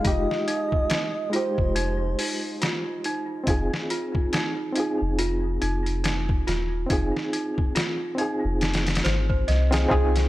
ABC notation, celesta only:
X:1
M:4/4
L:1/16
Q:"Swing 16ths" 1/4=70
K:Ab
V:1 name="Celesta"
F z E2 E z F z E2 E z F z E2 | E z F z E2 E z F z E2 E z F z | E2 E z F z E2 E z c c e c c A |]